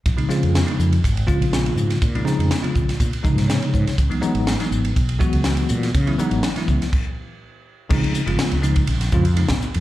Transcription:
<<
  \new Staff \with { instrumentName = "Tine electric piano" } { \time 4/4 \key des \mixolydian \tempo 4 = 122 r1 | r2. des''4 | r1 | r1 |
r1 | }
  \new Staff \with { instrumentName = "Tine electric piano" } { \clef bass \time 4/4 \key des \mixolydian r16 <des f aes c' ees'>16 <des f aes c' f'>8 r16 <des f aes c' ees'>8 r16 <c' f'>16 r16 <des f aes c' f'>4. | r16 <des f aes c' ees'>16 <des f aes c' ees'>8 r16 <des f aes c' f'>8 r16 <c' f'>16 r16 <c des f aes ees'>4. | r16 <fes ges aes ces' ees'>16 <fes ges aes ces' ees'>8 r16 <fes ges aes ces' ees'>8 r16 <ces' ees'>16 r16 <fes ges aes ces' ges'>4. | r16 <fes ges aes ces' fes'>16 <fes ges aes ces' ees'>8 r16 <fes ges aes ces' fes'>8 r2 r16 |
<des f aes c' ees'>8 r16 <des f aes c' f'>8 r16 <des f aes c' ees'>8 <c' f'>16 r16 <des f aes c' f'>16 <c' ees'>16 <des f aes c' ees'>16 <c' f'>16 <c' f'>16 r16 | }
  \new Staff \with { instrumentName = "Fretless electric bass" } { \clef bass \time 4/4 \key des \mixolydian bes,,16 r8 f,8 r16 f,8 aes,,8 r16 bes,,8. aes,8 | bes,8 r16 f,16 r8 bes,,16 r16 bes,16 r8 aes,8 r16 aes,16 r16 | des,16 r8 aes,,8 r16 aes,,8 ces,8 r16 des,8. bes,8 | des8 r16 aes,,16 r8 des,16 r2 r16 |
bes,,16 r8 aes,,16 r16 des,8 r16 bes,,8 f,8. bes,,16 r16 f,16 | }
  \new DrumStaff \with { instrumentName = "Drums" } \drummode { \time 4/4 <hhp bd cymr>16 cymr16 <hhp sn>16 cymr16 <hhp cymr sn>16 cymr16 hhp16 cymr16 <hhp bd cymr>16 cymr16 <hhp bd>16 cymr16 <hhp cymr sn>16 cymr16 hhp16 <cymr sn>16 | <hhp bd cymr>16 cymr16 <hhp sn>16 cymr16 <hhp cymr sn>16 cymr16 <hhp bd>16 <cymr sn>16 <hhp bd cymr>16 cymr16 <hhp bd>16 <cymr sn>16 <hhp cymr sn>16 cymr16 <hhp bd>16 <cymr sn>16 | <hhp bd cymr>16 cymr16 hhp16 cymr16 <hhp cymr sn>16 <cymr sn>16 hhp16 cymr16 <hhp bd cymr>16 cymr16 <hhp bd>16 cymr16 <hhp cymr sn>16 cymr16 hhp16 <cymr sn>16 | <hhp bd cymr>16 cymr16 hhp16 cymr16 <hhp cymr sn>16 <cymr sn>16 <hhp bd>16 <cymr sn>16 <cymc bd>4 r4 |
<cymc bd>16 cymr16 hhp16 cymr16 <cymr sn>16 cymr16 hhp16 <bd cymr>16 cymr16 <cymr sn>16 <hhp bd>16 cymr16 cymr16 <bd cymr sn>16 hhp16 cymr16 | }
>>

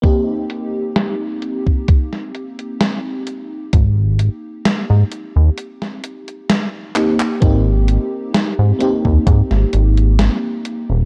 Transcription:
<<
  \new Staff \with { instrumentName = "FM electric piano" } { \time 4/4 \key aes \lydian \tempo 4 = 65 <bes c' ees' g'>1~ | <bes c' ees' g'>2.~ <bes c' ees' g'>8 <bes c' ees' g'>8 | <bes c' ees' g'>4. <bes c' ees' g'>2~ <bes c' ees' g'>8 | }
  \new Staff \with { instrumentName = "Analog synth bass" } { \clef bass \time 4/4 \key aes \lydian r1 | aes,,8 r8. aes,16 r16 ees,16 r2 | aes,,8 r8. aes,16 r16 ees,16 aes,16 aes,,16 aes,,8 r8. ees,,16 | }
  \new DrumStaff \with { instrumentName = "Drums" } \drummode { \time 4/4 <hh bd>8 hh8 <hh sn>8 hh16 bd16 <hh bd>16 sn16 hh16 hh16 <hh sn>8 hh8 | <hh bd>8 hh8 <hh sn>8 hh8 hh16 sn16 hh16 hh16 <hh sn>8 <hc hh>16 hc16 | <hh bd>8 hh8 <hh sn>8 hh16 bd16 <hh bd>16 sn16 hh16 hh16 <hh sn>8 hh8 | }
>>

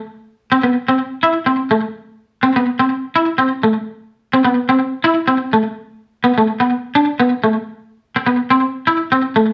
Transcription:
\new Staff \with { instrumentName = "Clean electric guitar" } { \time 4/4 \key a \minor \tempo 4 = 126 r4 c'16 b8 c'8 r16 e'8 c'8 a8 | r4 c'16 b8 c'8 r16 e'8 c'8 a8 | r4 c'16 b8 c'8 r16 e'8 c'8 a8 | r4 b16 a8 b8 r16 d'8 b8 a8 |
r4 r16 b8 c'8 r16 e'8 c'8 a8 | }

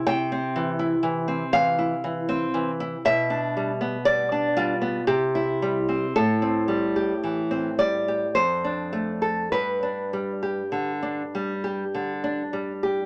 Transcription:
\new Staff \with { instrumentName = "Nylon-string guitar" } { \time 3/4 \key g \mixolydian \tempo 4 = 56 << { g''4. f''4. | e''4 d''8 f'8 g'4 | a'4. d''8 c''4 | b'2~ b'8 r8 | } \\ { c16 c'16 e16 e'16 e16 c'16 e16 e'16 e16 c'16 e16 e'16 | b,16 d'16 g16 b16 g16 d'16 g16 b16 c16 e'16 g16 c'16 | a,16 c'16 g16 g'16 e16 c'16 g16 g'16 f,16 d'16 a16 a'16 | g,16 d'16 g16 g'16 d16 d'16 g16 g'16 d16 d'16 g16 g'16 | } >> }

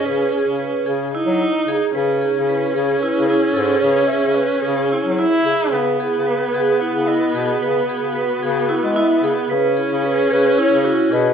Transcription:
<<
  \new Staff \with { instrumentName = "Clarinet" } { \time 7/8 \key cis \minor \tempo 4 = 111 gis'2 r4. | r8 dis'8 e'8 gis'8 b'8 gis'8 a'8 | cis''8 e''8 b'8 gis'4. r8 | r8 e'8 gis'8 b'8 fis''8 dis''8 r8 |
r8 fis'2 e''8 r8 | r8 e'8 gis'8 b'8 cis''8 fis'8 b'8 | }
  \new Staff \with { instrumentName = "Vibraphone" } { \time 7/8 \key cis \minor b'8 gis'8 b'8 gis'8 e'8 e'8 gis'8 | b'8 gis'8 b'8 gis'8 e'8 e'8 gis'8 | b'8 gis'8 b'8 gis'8 e'8 e'8 gis'8 | b'8 gis'8 b'8 gis'8 e'8 e'8 gis'8 |
b'8 gis'8 b'8 gis'8 e'8 e'8 gis'8 | b'8 gis'8 b'8 gis'8 e'8 e'8 gis'8 | }
  \new Staff \with { instrumentName = "Viola" } { \time 7/8 \key cis \minor cis'2 dis'4. | cis'2.~ cis'8~ | cis'2~ cis'8 e'4 | b2.~ b8~ |
b2.~ b8 | cis'2.~ cis'8 | }
  \new Staff \with { instrumentName = "Bass clarinet" } { \clef bass \time 7/8 \key cis \minor cis8 r16 cis8 r16 cis8. fis8 r16 cis16 r16 | cis8. cis8. cis8 r16 cis8 r16 gis,8 | cis8 r16 cis8 r16 cis8. fis8 r16 cis16 r16 | cis8. cis8. cis8 r16 cis8 r16 b,8 |
cis8 r16 cis8 r16 cis8. gis8 r16 cis16 r16 | cis8. cis8. cis8 r16 cis8 r16 b,8 | }
>>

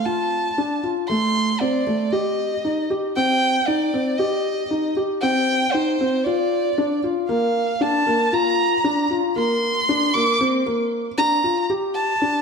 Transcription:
<<
  \new Staff \with { instrumentName = "Violin" } { \time 4/4 \key g \minor \tempo 4 = 116 a''4. r8 c'''4 d''4 | ees''4. r8 g''4 d''4 | ees''4. r8 g''4 c''4 | d''4. r8 f''4 a''4 |
bes''4. r8 c'''4. d'''8 | r4. bes''4 r8 a''4 | }
  \new Staff \with { instrumentName = "Felt piano" } { \time 4/4 \key g \minor f'4 d'8 f'8 a4 c'8 a8 | g'4 ees'8 g'8 c'4 ees'8 c'8 | g'4 ees'8 g'8 c'4 ees'8 c'8 | f'4 d'8 f'8 bes4 d'8 bes8 |
f'4 d'8 f'8 bes4 d'8 bes8 | c'8 bes4 d'8 f'8 g'4 d'8 | }
>>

